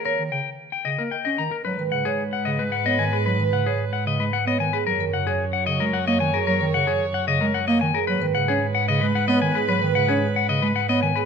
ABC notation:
X:1
M:3/4
L:1/16
Q:1/4=112
K:D#m
V:1 name="Clean electric guitar"
A z =g z2 g d A g d a A | [K:G#m] B z f G z f d B f d g B | B z f G z f d B f d g B | A z f G z f d A f d g A |
A z f G z f d A f d g A | B z f G z f d B f d g B | B z f G z f d B f d g B |]
V:2 name="Marimba"
c z6 z d z A z | [K:G#m] z B z c z4 z c z G | z B z c z4 z c z G | z A z c z4 z c z G |
z A z c z4 z c z G | z B z c z4 z c z G | z B z c z4 z c z G |]
V:3 name="Soprano saxophone"
z12 | [K:G#m] B12- | B8- B3 z | c12- |
c8- c3 z | B12- | B8- B3 z |]
V:4 name="Bass clarinet" clef=bass
z D, C, z3 C, A, z C D, z | [K:G#m] F, D, C, z3 C, G, z B, D, z | F, D, C, z3 C, G, z B, D, z | F, D, C, z3 C, G, z A, D, z |
F, D, C, z3 C, G, z A, D, z | F, D, C, C z2 C, G, z B, D, z | F, D, C, C z2 C, G, z B, D, z |]
V:5 name="Double bass section" clef=bass
z12 | [K:G#m] G,,12- | G,,12 | F,,12- |
F,,12 | G,,12- | G,,12 |]